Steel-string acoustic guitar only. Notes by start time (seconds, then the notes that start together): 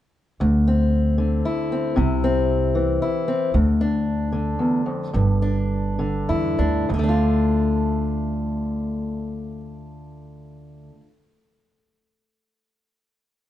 0.40 D2
0.68 C4
1.18 D3
1.45 E4
1.72 C4
1.96 C3
2.24 C4
2.75 E3
3.02 E4
3.28 C4
3.54 D2
3.81 D4
4.32 D3
4.59 E2
4.86 F2
5.13 G2
5.42 D4
5.99 D3
6.29 E4
6.59 D4
6.89 D2
6.94 D3
6.99 A3
7.04 D4
7.09 F4